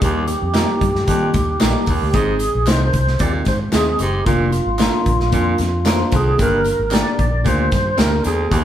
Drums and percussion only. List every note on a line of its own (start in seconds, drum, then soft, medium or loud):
0.01 kick loud
0.01 closed hi-hat medium
0.01 tambourine medium
0.28 closed hi-hat medium
0.28 tambourine medium
0.54 snare loud
0.54 clap medium
0.54 closed hi-hat medium
0.54 tambourine medium
0.81 kick medium
0.81 closed hi-hat medium
0.95 snare soft
1.08 kick medium
1.08 closed hi-hat medium
1.34 kick medium
1.34 closed hi-hat medium
1.34 tambourine soft
1.61 snare loud
1.61 clap loud
1.61 closed hi-hat medium
1.61 tambourine loud
1.86 kick medium
1.86 open hi-hat medium
1.86 tambourine medium
2.13 kick loud
2.13 closed hi-hat medium
2.13 tambourine medium
2.39 closed hi-hat medium
2.39 tambourine medium
2.66 snare loud
2.66 clap medium
2.66 closed hi-hat medium
2.66 tambourine medium
2.93 kick medium
2.93 closed hi-hat medium
2.93 tambourine soft
3.07 snare soft
3.19 kick loud
3.19 closed hi-hat medium
3.45 kick medium
3.45 snare soft
3.45 closed hi-hat medium
3.45 tambourine soft
3.73 snare medium
3.73 clap medium
3.73 closed hi-hat medium
3.73 tambourine loud
3.99 closed hi-hat medium
3.99 tambourine medium
4.26 kick loud
4.26 closed hi-hat medium
4.26 tambourine medium
4.52 closed hi-hat medium
4.52 tambourine medium
4.79 snare loud
4.79 clap medium
4.79 closed hi-hat medium
4.79 tambourine medium
5.06 kick medium
5.06 closed hi-hat medium
5.20 snare soft
5.32 kick medium
5.32 closed hi-hat medium
5.32 tambourine soft
5.58 snare soft
5.58 closed hi-hat medium
5.58 tambourine soft
5.86 snare loud
5.86 clap loud
5.86 closed hi-hat medium
5.86 tambourine loud
6.12 kick loud
6.12 closed hi-hat medium
6.12 tambourine medium
6.38 kick loud
6.38 closed hi-hat medium
6.38 tambourine medium
6.64 closed hi-hat medium
6.64 tambourine medium
6.91 snare loud
6.91 clap medium
6.91 closed hi-hat medium
6.91 tambourine medium
7.19 kick medium
7.19 closed hi-hat medium
7.44 kick medium
7.44 closed hi-hat medium
7.44 tambourine soft
7.72 kick medium
7.72 snare soft
7.72 closed hi-hat medium
7.72 tambourine soft
7.98 snare medium
7.98 clap loud
7.98 closed hi-hat medium
7.98 tambourine loud
8.24 closed hi-hat medium
8.24 tambourine medium
8.51 kick loud
8.51 closed hi-hat loud
8.51 tambourine medium